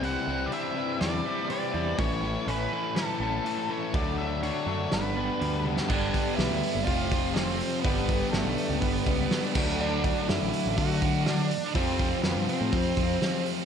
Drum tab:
CC |----------------|----------------|----------------|x---------------|
HH |o---o---o---o---|o---o---o---o---|o---o---o---o---|--o-o-o-o-o-o-o-|
SD |--------o-------|--------o-------|--------o------o|----o-------o---|
T1 |----------------|----------------|--------------o-|----------------|
BD |----------------|o---------------|o---------------|o-o-----o-o-----|

CC |--------------x-|----------------|----------------|
HH |o-o-o-o-o-o-o---|--o-o-o-o-o-o-o-|o-o-o-o-o-o-o-o-|
SD |----o-------o---|----o-------o---|----o-------o---|
T1 |----------------|----------------|----------------|
BD |o-o-----o-o---o-|--o-----o-o-----|o-o-----o-o-----|